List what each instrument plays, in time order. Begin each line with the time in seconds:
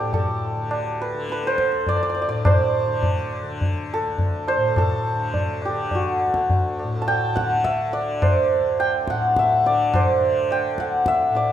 Already playing: tanpura D2 D3, santur G4 A4 C5 D5
0.00 tanpura A2
0.13 santur A4, tabla tin, tabla ge
0.57 tanpura D3
0.71 tabla na
1.01 santur B4
1.14 tanpura D3
1.29 santur B4, tabla te
1.44 santur C5, tabla te
1.58 tabla ke
1.70 tanpura D2, tabla te
1.87 santur D5, tabla tin, tabla ge
1.96 santur D5
2.03 santur D5
2.09 santur D5
2.15 santur D5
2.22 santur D5
2.28 tanpura A2, santur D5
2.45 santur C5, tabla na, tabla ge
2.87 tanpura D3
3.03 tabla tin, tabla ge
3.33 tabla na
3.43 tanpura D3
3.61 tabla tin, tabla ge
3.94 santur A4
4.01 tanpura D2
4.18 tabla tin, tabla ge
4.48 santur C5, tabla na
4.57 tanpura A2
4.76 santur A4, tabla na, tabla ge
5.13 tanpura D3
5.34 tabla tin, tabla ge
5.62 santur G4, tabla na
5.69 tanpura D3
5.91 santur F#4, tabla tin, tabla ge
6.20 tabla na
6.25 tanpura D2
6.34 tabla ke
6.50 tabla tin, tabla ge
6.79 tanpura A2, tabla na
7.02 santur A5
7.08 santur G5, tabla na
7.36 tanpura D3, santur F#5, tabla ke
7.64 santur E5, tabla ke
7.93 tanpura D3, santur D5, tabla te
8.22 santur C5, tabla na, tabla ge
8.53 tanpura D2
8.80 santur G5, tabla na
9.07 tanpura A2, santur F#5, tabla ke
9.36 santur E5, tabla ke
9.63 tanpura D3, santur D5, tabla te
9.94 santur C5, tabla na, tabla ge
10.20 tanpura D3
10.51 santur G5, tabla na
10.74 tanpura D2, tabla ke
10.80 santur F#5
11.06 santur E5, tabla ke
11.30 tanpura A2
11.35 santur D5, tabla te